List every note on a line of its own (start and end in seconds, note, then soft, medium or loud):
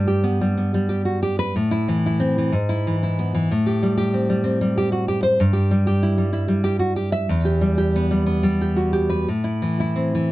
0.00 1.51 G2 medium
0.00 0.40 G3 medium
0.07 0.88 G4 medium
0.24 0.56 B3 medium
0.41 0.73 G3 medium
0.57 1.55 B3 medium
0.74 1.55 G3 medium
0.89 1.05 G4 medium
1.05 1.22 F#4 medium
1.23 1.38 G4 medium
1.39 1.54 B4 loud
1.56 2.50 A2 medium
1.71 1.97 E4 medium
1.88 2.37 E3 medium
2.06 2.53 E4 medium
2.20 2.52 C4 medium
2.38 2.53 E3 medium
2.52 3.47 G#2 medium
2.69 2.95 E4 loud
2.87 3.33 E3 medium
3.03 3.51 E4 medium
3.19 3.50 B3 medium
3.35 3.50 E3 medium
3.51 5.37 A2 medium
3.66 3.96 G4 medium
3.83 4.28 G3 medium
3.97 4.76 G4 medium
4.14 4.43 C4 medium
4.30 4.60 G3 medium
4.44 5.39 C4 medium
4.61 5.40 G3 medium
4.78 4.92 G4 medium
4.92 5.08 F#4 medium
5.08 5.22 G4 medium
5.23 5.39 C5 loud
5.40 7.25 G2 medium
5.53 5.86 G4 medium
5.71 6.17 G3 medium
5.87 6.63 G4 medium
6.03 6.32 E4 medium
6.18 6.47 G3 medium
6.33 7.29 E4 medium
6.48 7.29 G3 medium
6.64 6.79 G4 medium
6.79 6.96 F#4 medium
6.96 7.12 G4 medium
7.12 7.29 E5 loud
7.29 9.24 E2 medium
7.45 7.77 G4 medium
7.61 8.10 G3 medium
7.78 8.60 G4 medium
7.96 8.25 B3 medium
8.11 8.42 G3 medium
8.26 9.27 B3 medium
8.43 9.27 G3 medium
8.61 8.92 G4 medium
8.76 9.27 F#4 medium
8.93 9.27 G4 medium
9.09 9.27 B4 loud
9.28 10.32 A2 medium
9.44 9.79 E4 medium
9.62 10.14 E3 medium
9.80 10.32 E4 medium
9.96 10.32 C4 medium
10.15 10.32 E3 medium